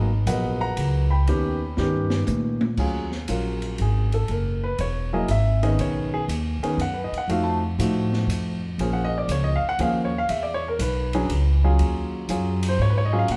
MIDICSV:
0, 0, Header, 1, 5, 480
1, 0, Start_track
1, 0, Key_signature, -6, "minor"
1, 0, Tempo, 500835
1, 1220, Time_signature, 3, 2, 24, 8
1, 12812, End_track
2, 0, Start_track
2, 0, Title_t, "Grand piano"
2, 0, Program_c, 0, 0
2, 0, Note_on_c, 0, 71, 64
2, 0, Note_on_c, 0, 75, 81
2, 218, Note_off_c, 0, 75, 0
2, 226, Note_off_c, 0, 71, 0
2, 260, Note_on_c, 0, 54, 55
2, 261, Note_on_c, 0, 70, 52
2, 261, Note_on_c, 0, 78, 76
2, 263, Note_on_c, 0, 59, 59
2, 265, Note_on_c, 0, 71, 68
2, 277, Note_on_c, 0, 75, 68
2, 572, Note_off_c, 0, 75, 0
2, 574, Note_off_c, 0, 78, 0
2, 585, Note_on_c, 0, 82, 92
2, 589, Note_on_c, 0, 78, 70
2, 1002, Note_off_c, 0, 54, 0
2, 1002, Note_off_c, 0, 70, 0
2, 1003, Note_off_c, 0, 59, 0
2, 1004, Note_off_c, 0, 71, 0
2, 1034, Note_off_c, 0, 78, 0
2, 1059, Note_on_c, 0, 83, 77
2, 1068, Note_on_c, 0, 79, 63
2, 1080, Note_off_c, 0, 82, 0
2, 1225, Note_on_c, 0, 59, 57
2, 1226, Note_on_c, 0, 51, 61
2, 1232, Note_on_c, 0, 61, 56
2, 1234, Note_on_c, 0, 67, 71
2, 1517, Note_off_c, 0, 51, 0
2, 1517, Note_off_c, 0, 59, 0
2, 1520, Note_off_c, 0, 61, 0
2, 1521, Note_off_c, 0, 67, 0
2, 1706, Note_on_c, 0, 59, 56
2, 1708, Note_on_c, 0, 61, 49
2, 1709, Note_on_c, 0, 51, 61
2, 1713, Note_on_c, 0, 67, 73
2, 2139, Note_off_c, 0, 83, 0
2, 2144, Note_off_c, 0, 79, 0
2, 2445, Note_off_c, 0, 59, 0
2, 2446, Note_off_c, 0, 61, 0
2, 2447, Note_off_c, 0, 51, 0
2, 2449, Note_off_c, 0, 67, 0
2, 2666, Note_on_c, 0, 54, 54
2, 2673, Note_on_c, 0, 61, 49
2, 2673, Note_on_c, 0, 65, 51
2, 2678, Note_on_c, 0, 68, 65
2, 2958, Note_off_c, 0, 54, 0
2, 2961, Note_off_c, 0, 65, 0
2, 2962, Note_off_c, 0, 61, 0
2, 2964, Note_off_c, 0, 68, 0
2, 3148, Note_on_c, 0, 54, 47
2, 3149, Note_on_c, 0, 65, 47
2, 3151, Note_on_c, 0, 61, 45
2, 3152, Note_on_c, 0, 70, 52
2, 3658, Note_on_c, 0, 68, 65
2, 3887, Note_off_c, 0, 54, 0
2, 3888, Note_off_c, 0, 65, 0
2, 3889, Note_off_c, 0, 61, 0
2, 3889, Note_off_c, 0, 70, 0
2, 3958, Note_off_c, 0, 68, 0
2, 3967, Note_on_c, 0, 69, 64
2, 4108, Note_off_c, 0, 69, 0
2, 4131, Note_on_c, 0, 70, 63
2, 4435, Note_off_c, 0, 70, 0
2, 4443, Note_on_c, 0, 71, 86
2, 4586, Note_off_c, 0, 71, 0
2, 4606, Note_on_c, 0, 73, 74
2, 4912, Note_off_c, 0, 73, 0
2, 4916, Note_on_c, 0, 54, 76
2, 4919, Note_on_c, 0, 64, 62
2, 4920, Note_on_c, 0, 58, 64
2, 4923, Note_on_c, 0, 68, 75
2, 4925, Note_on_c, 0, 75, 77
2, 5052, Note_off_c, 0, 54, 0
2, 5053, Note_off_c, 0, 64, 0
2, 5054, Note_off_c, 0, 58, 0
2, 5055, Note_off_c, 0, 68, 0
2, 5068, Note_off_c, 0, 75, 0
2, 5090, Note_on_c, 0, 76, 89
2, 5392, Note_on_c, 0, 51, 76
2, 5393, Note_on_c, 0, 59, 63
2, 5395, Note_off_c, 0, 76, 0
2, 5395, Note_on_c, 0, 68, 77
2, 5398, Note_on_c, 0, 61, 64
2, 5399, Note_on_c, 0, 75, 85
2, 5544, Note_off_c, 0, 75, 0
2, 5565, Note_on_c, 0, 73, 72
2, 5868, Note_off_c, 0, 68, 0
2, 5873, Note_off_c, 0, 73, 0
2, 5882, Note_on_c, 0, 68, 99
2, 5971, Note_off_c, 0, 68, 0
2, 5996, Note_off_c, 0, 51, 0
2, 5996, Note_off_c, 0, 59, 0
2, 5998, Note_off_c, 0, 61, 0
2, 6352, Note_on_c, 0, 51, 67
2, 6355, Note_on_c, 0, 59, 64
2, 6355, Note_on_c, 0, 68, 79
2, 6358, Note_on_c, 0, 61, 63
2, 6491, Note_off_c, 0, 51, 0
2, 6492, Note_off_c, 0, 59, 0
2, 6492, Note_off_c, 0, 68, 0
2, 6494, Note_off_c, 0, 61, 0
2, 6531, Note_on_c, 0, 78, 88
2, 6649, Note_on_c, 0, 71, 60
2, 6677, Note_off_c, 0, 78, 0
2, 6749, Note_on_c, 0, 75, 80
2, 6817, Note_off_c, 0, 71, 0
2, 6864, Note_off_c, 0, 75, 0
2, 6878, Note_on_c, 0, 78, 86
2, 6968, Note_off_c, 0, 78, 0
2, 6989, Note_on_c, 0, 53, 57
2, 6990, Note_on_c, 0, 57, 56
2, 6993, Note_on_c, 0, 63, 54
2, 6995, Note_on_c, 0, 66, 64
2, 7003, Note_on_c, 0, 77, 68
2, 7126, Note_on_c, 0, 81, 80
2, 7154, Note_off_c, 0, 77, 0
2, 7231, Note_off_c, 0, 81, 0
2, 7282, Note_off_c, 0, 53, 0
2, 7282, Note_off_c, 0, 57, 0
2, 7283, Note_off_c, 0, 63, 0
2, 7285, Note_off_c, 0, 66, 0
2, 7469, Note_on_c, 0, 53, 53
2, 7473, Note_on_c, 0, 57, 46
2, 7473, Note_on_c, 0, 63, 49
2, 7476, Note_on_c, 0, 66, 54
2, 8209, Note_off_c, 0, 53, 0
2, 8211, Note_off_c, 0, 57, 0
2, 8211, Note_off_c, 0, 63, 0
2, 8212, Note_off_c, 0, 66, 0
2, 8435, Note_on_c, 0, 53, 61
2, 8436, Note_on_c, 0, 68, 62
2, 8437, Note_on_c, 0, 58, 54
2, 8437, Note_on_c, 0, 61, 54
2, 8561, Note_on_c, 0, 78, 79
2, 8669, Note_on_c, 0, 75, 103
2, 8733, Note_off_c, 0, 78, 0
2, 8784, Note_off_c, 0, 75, 0
2, 8796, Note_on_c, 0, 74, 84
2, 8886, Note_off_c, 0, 74, 0
2, 8928, Note_on_c, 0, 73, 78
2, 9046, Note_on_c, 0, 75, 92
2, 9075, Note_off_c, 0, 73, 0
2, 9159, Note_on_c, 0, 77, 85
2, 9171, Note_off_c, 0, 53, 0
2, 9172, Note_off_c, 0, 58, 0
2, 9172, Note_off_c, 0, 61, 0
2, 9172, Note_off_c, 0, 68, 0
2, 9215, Note_off_c, 0, 75, 0
2, 9269, Note_off_c, 0, 77, 0
2, 9285, Note_on_c, 0, 78, 106
2, 9371, Note_off_c, 0, 78, 0
2, 9386, Note_on_c, 0, 53, 69
2, 9391, Note_on_c, 0, 58, 60
2, 9393, Note_on_c, 0, 61, 59
2, 9395, Note_on_c, 0, 68, 68
2, 9405, Note_on_c, 0, 77, 79
2, 9515, Note_off_c, 0, 68, 0
2, 9529, Note_on_c, 0, 68, 50
2, 9553, Note_off_c, 0, 77, 0
2, 9630, Note_on_c, 0, 73, 77
2, 9679, Note_off_c, 0, 53, 0
2, 9681, Note_off_c, 0, 58, 0
2, 9682, Note_off_c, 0, 61, 0
2, 9696, Note_off_c, 0, 68, 0
2, 9744, Note_off_c, 0, 73, 0
2, 9760, Note_on_c, 0, 77, 90
2, 9848, Note_off_c, 0, 77, 0
2, 9874, Note_on_c, 0, 76, 75
2, 9994, Note_on_c, 0, 74, 76
2, 10027, Note_off_c, 0, 76, 0
2, 10105, Note_on_c, 0, 73, 92
2, 10168, Note_off_c, 0, 74, 0
2, 10221, Note_off_c, 0, 73, 0
2, 10239, Note_on_c, 0, 70, 87
2, 10327, Note_off_c, 0, 70, 0
2, 10366, Note_on_c, 0, 71, 75
2, 10681, Note_on_c, 0, 68, 85
2, 10683, Note_on_c, 0, 54, 80
2, 10684, Note_on_c, 0, 61, 70
2, 10686, Note_on_c, 0, 62, 68
2, 10813, Note_off_c, 0, 68, 0
2, 10814, Note_off_c, 0, 54, 0
2, 10814, Note_off_c, 0, 61, 0
2, 10816, Note_off_c, 0, 62, 0
2, 11157, Note_on_c, 0, 54, 71
2, 11159, Note_on_c, 0, 61, 65
2, 11159, Note_on_c, 0, 65, 67
2, 11161, Note_on_c, 0, 68, 76
2, 11274, Note_off_c, 0, 71, 0
2, 11753, Note_off_c, 0, 54, 0
2, 11754, Note_off_c, 0, 61, 0
2, 11754, Note_off_c, 0, 65, 0
2, 11755, Note_off_c, 0, 68, 0
2, 11782, Note_on_c, 0, 54, 59
2, 11782, Note_on_c, 0, 61, 47
2, 11784, Note_on_c, 0, 65, 49
2, 11790, Note_on_c, 0, 68, 66
2, 12158, Note_on_c, 0, 72, 87
2, 12243, Note_off_c, 0, 72, 0
2, 12284, Note_on_c, 0, 73, 90
2, 12362, Note_on_c, 0, 71, 77
2, 12376, Note_off_c, 0, 73, 0
2, 12413, Note_off_c, 0, 71, 0
2, 12437, Note_on_c, 0, 73, 90
2, 12511, Note_on_c, 0, 75, 88
2, 12519, Note_off_c, 0, 54, 0
2, 12519, Note_off_c, 0, 61, 0
2, 12520, Note_off_c, 0, 65, 0
2, 12523, Note_off_c, 0, 68, 0
2, 12581, Note_on_c, 0, 54, 76
2, 12583, Note_on_c, 0, 68, 83
2, 12584, Note_on_c, 0, 61, 63
2, 12587, Note_on_c, 0, 65, 64
2, 12588, Note_off_c, 0, 73, 0
2, 12620, Note_off_c, 0, 75, 0
2, 12637, Note_on_c, 0, 77, 84
2, 12719, Note_off_c, 0, 54, 0
2, 12721, Note_off_c, 0, 61, 0
2, 12721, Note_off_c, 0, 68, 0
2, 12722, Note_off_c, 0, 77, 0
2, 12723, Note_off_c, 0, 65, 0
2, 12763, Note_on_c, 0, 78, 89
2, 12812, Note_off_c, 0, 78, 0
2, 12812, End_track
3, 0, Start_track
3, 0, Title_t, "Upright bass"
3, 0, Program_c, 1, 32
3, 0, Note_on_c, 1, 32, 73
3, 243, Note_off_c, 1, 32, 0
3, 253, Note_on_c, 1, 34, 93
3, 722, Note_off_c, 1, 34, 0
3, 734, Note_on_c, 1, 37, 84
3, 1203, Note_off_c, 1, 37, 0
3, 1223, Note_on_c, 1, 39, 72
3, 1688, Note_off_c, 1, 39, 0
3, 1703, Note_on_c, 1, 43, 86
3, 2168, Note_off_c, 1, 43, 0
3, 2182, Note_on_c, 1, 46, 83
3, 2648, Note_off_c, 1, 46, 0
3, 2661, Note_on_c, 1, 39, 67
3, 3127, Note_off_c, 1, 39, 0
3, 3149, Note_on_c, 1, 34, 82
3, 3612, Note_off_c, 1, 34, 0
3, 3635, Note_on_c, 1, 32, 74
3, 4095, Note_off_c, 1, 32, 0
3, 4108, Note_on_c, 1, 30, 65
3, 4572, Note_off_c, 1, 30, 0
3, 4587, Note_on_c, 1, 28, 80
3, 5052, Note_off_c, 1, 28, 0
3, 5067, Note_on_c, 1, 32, 75
3, 5532, Note_off_c, 1, 32, 0
3, 5543, Note_on_c, 1, 35, 68
3, 6011, Note_off_c, 1, 35, 0
3, 6022, Note_on_c, 1, 39, 94
3, 6328, Note_off_c, 1, 39, 0
3, 6490, Note_on_c, 1, 42, 76
3, 6802, Note_off_c, 1, 42, 0
3, 6974, Note_on_c, 1, 41, 75
3, 7446, Note_off_c, 1, 41, 0
3, 7463, Note_on_c, 1, 45, 91
3, 7920, Note_off_c, 1, 45, 0
3, 7926, Note_on_c, 1, 41, 82
3, 8401, Note_off_c, 1, 41, 0
3, 8415, Note_on_c, 1, 34, 77
3, 8886, Note_off_c, 1, 34, 0
3, 8891, Note_on_c, 1, 37, 81
3, 9201, Note_off_c, 1, 37, 0
3, 9378, Note_on_c, 1, 39, 86
3, 9846, Note_off_c, 1, 39, 0
3, 9861, Note_on_c, 1, 40, 75
3, 10327, Note_off_c, 1, 40, 0
3, 10341, Note_on_c, 1, 35, 89
3, 10807, Note_off_c, 1, 35, 0
3, 10825, Note_on_c, 1, 37, 83
3, 11288, Note_off_c, 1, 37, 0
3, 11303, Note_on_c, 1, 39, 75
3, 11766, Note_off_c, 1, 39, 0
3, 11775, Note_on_c, 1, 42, 83
3, 12241, Note_off_c, 1, 42, 0
3, 12256, Note_on_c, 1, 44, 91
3, 12721, Note_off_c, 1, 44, 0
3, 12738, Note_on_c, 1, 46, 84
3, 12812, Note_off_c, 1, 46, 0
3, 12812, End_track
4, 0, Start_track
4, 0, Title_t, "Muted upright bass strokes"
4, 6822, Note_on_c, 9, 29, 38
4, 6918, Note_off_c, 9, 29, 0
4, 9218, Note_on_c, 9, 29, 41
4, 9314, Note_off_c, 9, 29, 0
4, 12812, End_track
5, 0, Start_track
5, 0, Title_t, "Drums"
5, 257, Note_on_c, 9, 44, 63
5, 257, Note_on_c, 9, 51, 65
5, 352, Note_off_c, 9, 44, 0
5, 352, Note_off_c, 9, 51, 0
5, 737, Note_on_c, 9, 51, 60
5, 833, Note_off_c, 9, 51, 0
5, 1221, Note_on_c, 9, 51, 47
5, 1317, Note_off_c, 9, 51, 0
5, 1696, Note_on_c, 9, 38, 50
5, 1792, Note_off_c, 9, 38, 0
5, 2015, Note_on_c, 9, 38, 65
5, 2110, Note_off_c, 9, 38, 0
5, 2174, Note_on_c, 9, 44, 62
5, 2174, Note_on_c, 9, 48, 69
5, 2270, Note_off_c, 9, 44, 0
5, 2270, Note_off_c, 9, 48, 0
5, 2501, Note_on_c, 9, 48, 84
5, 2596, Note_off_c, 9, 48, 0
5, 2658, Note_on_c, 9, 49, 57
5, 2662, Note_on_c, 9, 36, 56
5, 2754, Note_off_c, 9, 49, 0
5, 2758, Note_off_c, 9, 36, 0
5, 2986, Note_on_c, 9, 38, 43
5, 3082, Note_off_c, 9, 38, 0
5, 3141, Note_on_c, 9, 44, 55
5, 3141, Note_on_c, 9, 51, 70
5, 3237, Note_off_c, 9, 44, 0
5, 3237, Note_off_c, 9, 51, 0
5, 3469, Note_on_c, 9, 51, 43
5, 3564, Note_off_c, 9, 51, 0
5, 3625, Note_on_c, 9, 51, 56
5, 3720, Note_off_c, 9, 51, 0
5, 3951, Note_on_c, 9, 51, 43
5, 4047, Note_off_c, 9, 51, 0
5, 4103, Note_on_c, 9, 51, 45
5, 4199, Note_off_c, 9, 51, 0
5, 4585, Note_on_c, 9, 51, 55
5, 4681, Note_off_c, 9, 51, 0
5, 5064, Note_on_c, 9, 44, 46
5, 5064, Note_on_c, 9, 51, 61
5, 5159, Note_off_c, 9, 44, 0
5, 5159, Note_off_c, 9, 51, 0
5, 5395, Note_on_c, 9, 51, 46
5, 5490, Note_off_c, 9, 51, 0
5, 5547, Note_on_c, 9, 51, 57
5, 5643, Note_off_c, 9, 51, 0
5, 6031, Note_on_c, 9, 44, 51
5, 6031, Note_on_c, 9, 51, 71
5, 6127, Note_off_c, 9, 44, 0
5, 6127, Note_off_c, 9, 51, 0
5, 6358, Note_on_c, 9, 51, 44
5, 6454, Note_off_c, 9, 51, 0
5, 6512, Note_on_c, 9, 51, 54
5, 6608, Note_off_c, 9, 51, 0
5, 6839, Note_on_c, 9, 51, 40
5, 6935, Note_off_c, 9, 51, 0
5, 6991, Note_on_c, 9, 51, 52
5, 7087, Note_off_c, 9, 51, 0
5, 7471, Note_on_c, 9, 44, 59
5, 7471, Note_on_c, 9, 51, 71
5, 7567, Note_off_c, 9, 44, 0
5, 7567, Note_off_c, 9, 51, 0
5, 7794, Note_on_c, 9, 38, 47
5, 7890, Note_off_c, 9, 38, 0
5, 7951, Note_on_c, 9, 44, 67
5, 7951, Note_on_c, 9, 51, 65
5, 8046, Note_off_c, 9, 44, 0
5, 8046, Note_off_c, 9, 51, 0
5, 8426, Note_on_c, 9, 51, 56
5, 8522, Note_off_c, 9, 51, 0
5, 8901, Note_on_c, 9, 44, 52
5, 8901, Note_on_c, 9, 51, 64
5, 8997, Note_off_c, 9, 44, 0
5, 8997, Note_off_c, 9, 51, 0
5, 9381, Note_on_c, 9, 51, 58
5, 9476, Note_off_c, 9, 51, 0
5, 9860, Note_on_c, 9, 51, 61
5, 9956, Note_off_c, 9, 51, 0
5, 10344, Note_on_c, 9, 44, 61
5, 10344, Note_on_c, 9, 51, 75
5, 10440, Note_off_c, 9, 44, 0
5, 10440, Note_off_c, 9, 51, 0
5, 10668, Note_on_c, 9, 51, 49
5, 10764, Note_off_c, 9, 51, 0
5, 10826, Note_on_c, 9, 51, 62
5, 10921, Note_off_c, 9, 51, 0
5, 11300, Note_on_c, 9, 51, 54
5, 11396, Note_off_c, 9, 51, 0
5, 11775, Note_on_c, 9, 44, 53
5, 11775, Note_on_c, 9, 51, 65
5, 11871, Note_off_c, 9, 44, 0
5, 11871, Note_off_c, 9, 51, 0
5, 12101, Note_on_c, 9, 51, 77
5, 12197, Note_off_c, 9, 51, 0
5, 12730, Note_on_c, 9, 51, 57
5, 12812, Note_off_c, 9, 51, 0
5, 12812, End_track
0, 0, End_of_file